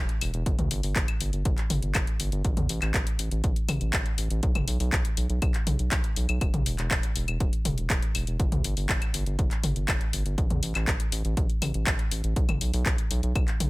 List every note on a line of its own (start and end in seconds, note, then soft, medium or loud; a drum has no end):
0.09 closed hi-hat soft
0.21 0.32 E1 loud
0.21 open hi-hat loud
0.21 claves medium
0.34 0.44 E1 medium
0.34 closed hi-hat soft
0.46 0.56 G1 loud
0.46 kick loud
0.46 closed hi-hat medium
0.58 0.69 D2 medium
0.58 closed hi-hat soft
0.58 mid tom medium
0.71 0.81 G1 loud
0.71 open hi-hat loud
0.83 0.94 G1 medium
0.83 open hi-hat medium
0.96 1.06 G1 loud
0.96 kick loud
0.96 clap loud
0.96 closed hi-hat soft
1.08 closed hi-hat medium
1.08 claves medium
1.21 1.31 G1 loud
1.21 open hi-hat loud
1.33 1.43 G1 medium
1.33 closed hi-hat soft
1.45 1.56 G1 loud
1.45 kick loud
1.45 closed hi-hat medium
1.58 clap soft
1.58 closed hi-hat soft
1.70 1.81 G1 medium
1.70 open hi-hat loud
1.70 mid tom medium
1.82 1.93 G1 medium
1.82 closed hi-hat soft
1.95 2.05 G1 loud
1.95 kick loud
1.95 clap loud
1.95 closed hi-hat medium
1.95 claves medium
2.07 closed hi-hat soft
2.20 2.30 G1 loud
2.20 open hi-hat loud
2.32 2.42 G1 medium
2.32 closed hi-hat soft
2.45 2.55 A1 loud
2.45 kick loud
2.45 closed hi-hat medium
2.57 2.67 E2 medium
2.57 closed hi-hat soft
2.57 mid tom medium
2.69 2.80 A1 loud
2.69 open hi-hat loud
2.82 2.92 A1 medium
2.82 clap soft
2.82 closed hi-hat soft
2.82 claves medium
2.94 3.04 A1 loud
2.94 kick loud
2.94 clap loud
2.94 closed hi-hat soft
3.07 closed hi-hat medium
3.19 3.29 A1 medium
3.19 open hi-hat loud
3.31 3.42 A1 medium
3.31 closed hi-hat soft
3.44 3.54 A1 loud
3.44 kick loud
3.44 closed hi-hat medium
3.56 closed hi-hat soft
3.68 3.79 A1 medium
3.68 open hi-hat loud
3.68 mid tom medium
3.68 claves medium
3.81 3.91 A1 medium
3.81 closed hi-hat soft
3.93 4.04 A1 loud
3.93 kick loud
3.93 clap loud
3.93 closed hi-hat medium
4.06 closed hi-hat soft
4.18 4.28 A1 loud
4.18 open hi-hat loud
4.30 4.41 A1 medium
4.30 closed hi-hat soft
4.43 4.53 B1 loud
4.43 kick loud
4.43 closed hi-hat medium
4.55 4.66 F#1 medium
4.55 closed hi-hat soft
4.55 mid tom medium
4.55 claves medium
4.68 4.78 B1 loud
4.68 open hi-hat loud
4.80 4.90 B1 medium
4.80 open hi-hat medium
4.92 5.03 B1 loud
4.92 kick loud
4.92 clap loud
4.92 closed hi-hat soft
5.05 closed hi-hat medium
5.17 5.28 B1 loud
5.17 open hi-hat loud
5.29 5.40 B1 medium
5.29 closed hi-hat soft
5.42 5.52 B1 loud
5.42 kick loud
5.42 closed hi-hat medium
5.42 claves medium
5.54 clap soft
5.54 closed hi-hat soft
5.67 5.77 B1 loud
5.67 open hi-hat loud
5.67 mid tom medium
5.79 5.90 B1 medium
5.79 closed hi-hat soft
5.92 6.02 B1 loud
5.92 kick loud
5.92 clap loud
5.92 closed hi-hat medium
6.04 closed hi-hat soft
6.16 6.27 B1 loud
6.16 open hi-hat loud
6.29 6.39 B1 medium
6.29 closed hi-hat soft
6.29 claves medium
6.41 6.52 E1 loud
6.41 kick loud
6.41 closed hi-hat medium
6.41 claves soft
6.54 6.64 B1 medium
6.54 closed hi-hat soft
6.54 mid tom medium
6.66 6.76 E1 loud
6.66 open hi-hat loud
6.78 6.89 E1 medium
6.78 clap soft
6.78 closed hi-hat soft
6.91 7.01 E1 loud
6.91 kick loud
6.91 clap loud
6.91 closed hi-hat soft
7.03 closed hi-hat medium
7.16 7.26 E1 medium
7.16 open hi-hat loud
7.28 7.38 E1 medium
7.28 closed hi-hat soft
7.28 claves medium
7.40 7.51 E1 loud
7.40 kick loud
7.40 closed hi-hat medium
7.53 closed hi-hat soft
7.65 7.76 E1 loud
7.65 open hi-hat loud
7.65 mid tom medium
7.78 7.88 E1 medium
7.78 closed hi-hat soft
7.90 8.00 E1 loud
7.90 kick loud
7.90 clap loud
7.90 closed hi-hat medium
8.02 closed hi-hat soft
8.15 8.25 E1 loud
8.15 open hi-hat loud
8.15 claves soft
8.27 8.38 E1 medium
8.27 closed hi-hat soft
8.40 8.50 G1 loud
8.40 kick loud
8.40 closed hi-hat medium
8.52 8.62 D2 medium
8.52 closed hi-hat soft
8.52 mid tom medium
8.64 8.75 G1 loud
8.64 open hi-hat loud
8.77 8.87 G1 medium
8.77 open hi-hat medium
8.89 8.99 G1 loud
8.89 kick loud
8.89 clap loud
8.89 closed hi-hat soft
9.02 closed hi-hat medium
9.02 claves soft
9.14 9.24 G1 loud
9.14 open hi-hat loud
9.26 9.37 G1 medium
9.26 closed hi-hat soft
9.39 9.49 G1 loud
9.39 kick loud
9.39 closed hi-hat medium
9.51 clap soft
9.51 closed hi-hat soft
9.63 9.74 G1 loud
9.63 open hi-hat loud
9.63 mid tom medium
9.76 9.86 G1 medium
9.76 closed hi-hat soft
9.88 9.99 G1 loud
9.88 kick loud
9.88 clap loud
9.88 closed hi-hat medium
9.88 claves medium
10.01 closed hi-hat soft
10.13 10.23 G1 loud
10.13 open hi-hat loud
10.26 10.36 G1 medium
10.26 closed hi-hat soft
10.38 10.48 A1 loud
10.38 kick loud
10.38 closed hi-hat medium
10.50 10.61 E2 medium
10.50 closed hi-hat soft
10.50 mid tom medium
10.63 10.73 A1 loud
10.63 open hi-hat loud
10.75 10.86 A1 medium
10.75 clap soft
10.75 closed hi-hat soft
10.75 claves medium
10.87 10.98 A1 loud
10.87 kick loud
10.87 clap loud
10.87 closed hi-hat soft
11.00 closed hi-hat medium
11.12 11.23 A1 medium
11.12 open hi-hat loud
11.25 11.35 A1 medium
11.25 closed hi-hat soft
11.37 11.47 A1 loud
11.37 kick loud
11.37 closed hi-hat medium
11.50 closed hi-hat soft
11.62 11.72 A1 loud
11.62 open hi-hat loud
11.62 mid tom medium
11.62 claves soft
11.74 11.85 A1 medium
11.74 closed hi-hat soft
11.87 11.97 A1 loud
11.87 kick loud
11.87 clap loud
11.87 closed hi-hat medium
11.99 closed hi-hat soft
12.11 12.22 A1 medium
12.11 open hi-hat loud
12.24 12.34 A1 medium
12.24 closed hi-hat soft
12.36 12.47 B1 loud
12.36 kick loud
12.36 closed hi-hat medium
12.49 12.59 F#1 medium
12.49 closed hi-hat soft
12.49 mid tom medium
12.49 claves medium
12.61 12.71 B1 loud
12.61 open hi-hat loud
12.74 12.84 B1 medium
12.74 open hi-hat medium
12.86 12.96 B1 loud
12.86 kick loud
12.86 clap loud
12.86 closed hi-hat soft
12.98 closed hi-hat medium
13.11 13.21 B1 loud
13.11 open hi-hat loud
13.23 13.33 B1 medium
13.23 closed hi-hat soft
13.35 13.46 B1 loud
13.35 kick loud
13.35 closed hi-hat medium
13.35 claves medium
13.48 clap soft
13.48 closed hi-hat soft
13.60 13.70 B1 medium
13.60 open hi-hat loud
13.60 mid tom medium